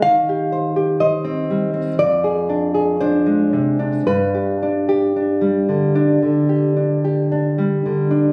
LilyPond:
\new Staff \with { instrumentName = "Nylon-string guitar" } { \time 4/4 \key g \phrygian \tempo 4 = 56 << { f''4 ees''4 d''4 c''4 | b'2.~ b'8 r8 | } \\ { ees16 g'16 c''16 g'16 c''16 c'16 g16 c'16 f,16 aes'16 d'16 aes'16 d'16 aes16 c16 d'16 | g,16 g'16 d'16 g'16 d'16 g16 d16 d'16 d16 g'16 d'16 g'16 d'16 g16 d16 d'16 | } >> }